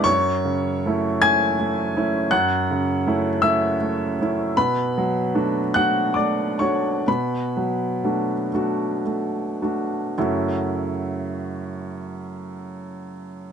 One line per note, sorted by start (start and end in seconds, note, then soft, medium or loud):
0.04 2.27 F#2 medium
0.04 1.16 C#5 medium
0.04 1.19 C#6 loud
0.45 1.06 C#3 medium
0.86 1.19 A3 soft
0.86 1.19 C#4 soft
0.86 1.19 E4 soft
1.22 1.55 A3 soft
1.22 1.55 C#4 soft
1.22 1.55 E4 medium
1.22 2.28 G#5 medium
1.22 2.32 G#6 loud
1.59 1.95 A3 soft
1.96 2.29 A3 soft
1.96 2.29 C#4 soft
1.96 2.29 E4 medium
2.31 4.52 F#2 medium
2.31 3.39 F#5 medium
2.31 3.42 F#6 medium
2.71 3.29 C#3 soft
3.07 3.39 A3 soft
3.07 3.40 C#4 soft
3.07 3.40 E4 soft
3.41 3.75 A3 soft
3.41 3.76 C#4 medium
3.41 3.76 E4 soft
3.41 4.13 E5 medium
3.41 4.17 E6 medium
3.81 4.19 A3 soft
4.21 4.54 A3 soft
4.21 4.54 C#4 soft
4.21 4.54 E4 soft
4.57 7.03 B2 medium
4.57 5.72 B4 medium
4.57 5.76 B5 medium
4.98 5.60 F#3 medium
5.35 5.71 A3 soft
5.35 5.72 D4 soft
5.35 5.72 F#4 soft
5.74 6.14 A3 soft
5.74 6.14 D4 soft
5.74 6.14 F#4 soft
5.74 6.15 F#5 medium
5.74 6.17 F#6 medium
6.14 6.59 A3 soft
6.14 6.57 D5 medium
6.14 6.59 D6 medium
6.59 7.02 A3 soft
6.59 7.02 D4 soft
6.59 7.03 F#4 soft
6.59 7.03 C#5 soft
6.59 7.05 C#6 medium
7.08 10.12 B2 medium
7.08 8.49 B4 soft
7.08 8.52 B5 medium
7.57 8.33 F#3 soft
8.04 8.48 A3 soft
8.04 8.49 D4 soft
8.04 8.49 F#4 soft
8.54 9.00 A3 soft
8.54 9.01 D4 soft
8.54 9.01 F#4 soft
9.05 9.61 A3 soft
9.62 10.13 A3 soft
9.62 10.13 D4 soft
9.62 10.13 F#4 soft
10.18 13.52 F#2 soft
10.18 13.52 C#3 soft
10.18 13.52 A3 soft
10.18 13.52 C#4 soft
10.18 13.52 E4 soft
10.18 13.52 F#4 soft